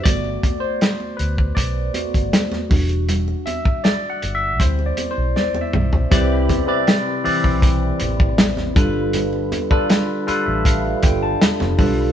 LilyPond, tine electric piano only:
\new Staff \with { instrumentName = "Tine electric piano" } { \time 4/4 \key g \major \tempo 4 = 79 << { d''8. c''8. b'8 d''4 r4 | r8 e''8 \tuplet 3/2 { d''8 fis''8 e''8 c''8 d''8 c''8 d''8 e''4 } | r1 | r4. f''16 e''16 f''8 g''16 a''16 b''4 | } \\ { <a b fis'>8 r2 <a b fis'>8 r8 <g d' fis'>8~ | <g d' fis'>2 <g c' e'>8 r4. | <c c' e' b' d''>8 r16 <c c' e' b' d''>8 r16 <e c' e' b' d''>4. r8 <g d' f' a' b'>8~ | <g d' f' a' b'>8 r16 <g d' f' a' b'>8 r16 <g d' f' a' b'>4. r8 <g d' f' a' b'>16 r16 | } >> }